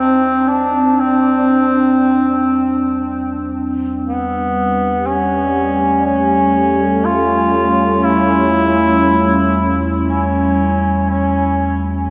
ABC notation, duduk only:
X:1
M:4/4
L:1/16
Q:1/4=60
K:Am
V:1 name="Duduk"
C2 D2 C8 z4 | B,4 ^C4 C4 F4 | E6- E z ^C4 C3 z |]